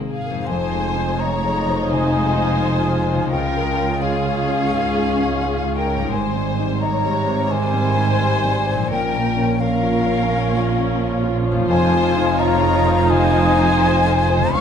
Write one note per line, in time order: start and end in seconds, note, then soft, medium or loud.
0.00 0.29 G#1 medium
0.00 0.29 G#2 medium
0.00 0.43 G#2 soft
0.00 0.45 G#2 soft
0.00 2.79 C3 soft
0.00 0.34 G#3 soft
0.00 0.52 G#3 soft
0.00 0.52 C4 soft
0.00 0.39 G#4 soft
0.00 0.14 A#4 soft
0.00 0.50 A#4 soft
0.11 0.46 G#4 medium
0.11 0.48 F5 medium
0.11 0.47 F5 medium
0.25 0.49 A#4 soft
0.30 3.27 F2 medium
0.35 3.18 G#3 soft
0.40 3.31 D#4 soft
0.44 1.19 C5 medium
0.44 1.21 G#5 medium
0.44 3.34 C6 soft
0.49 3.29 F1 medium
0.49 3.29 F2 medium
0.49 1.88 F2 medium
0.49 6.08 G#3 medium
0.49 3.29 D#4 medium
0.49 6.08 F4 medium
0.49 1.21 G#5 medium
0.72 1.11 G#3 soft
0.97 1.35 D#4 soft
1.20 1.93 C#5 medium
1.20 1.60 D#5 soft
1.20 1.91 A#5 medium
1.20 1.93 A#5 medium
1.44 1.83 G#4 soft
1.69 2.07 C5 medium
1.91 2.30 C3 soft
1.91 3.33 C5 medium
1.91 3.33 G#5 medium
1.91 3.30 G#5 loud
2.15 2.53 G#3 medium
2.39 2.77 D#4 soft
2.62 3.00 C5 medium
2.86 3.24 G#4 medium
3.09 3.33 C5 medium
3.15 6.06 C#3 medium
3.19 7.09 G#3 soft
3.24 6.10 C#4 soft
3.28 4.68 C#2 medium
3.28 6.08 C#2 medium
3.28 6.13 C#5 soft
3.28 4.03 G5 medium
3.33 6.08 C#2 medium
3.33 6.08 C#4 medium
3.33 4.01 A#4 medium
3.33 4.01 G5 medium
3.56 3.93 G#3 soft
3.79 4.16 C#4 medium
4.02 5.74 G#4 medium
4.02 4.39 C#5 medium
4.02 5.77 F5 medium
4.25 4.63 G#4 soft
4.49 4.86 C#5 medium
4.72 5.10 G#2 soft
4.95 5.33 G#3 soft
5.17 5.55 C#4 soft
5.64 6.02 G#4 medium
5.75 6.11 A#4 medium
5.75 6.13 G5 medium
5.75 6.12 G5 medium
5.87 6.11 C#5 soft
5.94 8.85 G#2 medium
5.99 8.87 G3 soft
6.03 8.89 D#4 soft
6.08 7.47 G#2 medium
6.08 6.81 G#5 medium
6.08 8.92 C6 soft
6.12 8.87 G#1 medium
6.12 8.87 G#2 medium
6.12 8.87 C3 medium
6.12 8.75 C3 medium
6.12 8.75 D#3 medium
6.12 8.87 G3 medium
6.12 6.82 C5 medium
6.12 6.57 G#5 medium
6.36 6.73 G3 soft
6.59 6.96 D#4 medium
6.80 7.51 C#5 medium
6.80 7.19 D#5 medium
6.80 7.53 A#5 medium
6.80 7.50 A#5 medium
7.04 7.42 G4 medium
7.28 7.65 C5 medium
7.50 7.88 D#3 medium
7.50 8.91 C5 medium
7.50 8.91 G#5 loud
7.50 8.92 G#5 medium
7.74 8.11 G3 medium
7.97 8.34 D#4 medium
8.20 8.58 C5 medium
8.44 8.82 G3 medium
8.67 8.91 C5 medium
8.73 11.64 A#2 medium
8.78 11.55 F3 medium
8.82 11.69 C#4 soft
8.87 11.67 A#1 medium
8.87 10.26 A#2 medium
8.87 11.71 C#5 medium
8.87 9.62 G5 medium
8.91 11.67 A#2 medium
8.91 14.51 F3 medium
8.91 11.67 C#4 medium
8.91 14.51 F4 medium
8.91 9.60 A#4 medium
8.91 9.61 G5 medium
9.13 9.51 F3 medium
9.36 9.74 C#4 medium
9.60 11.32 A#4 medium
9.60 9.97 C#5 medium
9.60 11.35 F5 loud
9.60 11.36 F5 medium
9.83 10.21 F4 medium
10.06 10.44 C#5 medium
10.30 10.68 A#3 medium
10.54 10.91 F3 medium
10.77 11.14 C#4 medium
11.00 11.38 C#5 medium
11.23 11.61 F4 medium
11.47 11.70 C#5 medium
11.52 14.49 F2 medium
11.57 14.40 F3 medium
11.61 14.53 D#4 medium
11.65 12.35 C5 loud
11.65 14.55 C6 medium
11.69 14.50 F1 medium
11.69 13.06 F2 medium
11.69 14.51 F2 medium
11.69 14.51 D#4 loud
11.69 14.52 D#4 medium
11.69 12.35 G#5 loud
11.69 12.41 G#5 loud
11.93 12.30 F3 medium
12.17 12.54 D#4 medium
12.38 13.10 C#5 medium
12.38 12.77 D#5 medium
12.38 13.10 A#5 medium
12.38 13.12 A#5 loud
12.63 13.01 F4 medium
12.86 13.24 C5 medium
13.10 13.48 C3 medium
13.10 14.52 C5 loud
13.10 14.56 G#5 loud
13.10 14.55 G#5 loud
13.34 13.72 F3 medium
13.57 13.96 D#4 medium
13.81 14.20 C5 medium
14.05 14.45 F4 medium
14.30 14.55 C5 medium
14.37 14.61 C#3 medium
14.41 14.61 F3 medium
14.45 14.61 C#4 medium
14.50 14.61 C#2 medium
14.50 14.61 C#5 medium
14.54 14.61 C#2 medium
14.54 14.61 F3 loud
14.54 14.61 C#4 loud
14.54 14.61 F4 loud
14.54 14.61 F5 loud
14.54 14.61 C#6 loud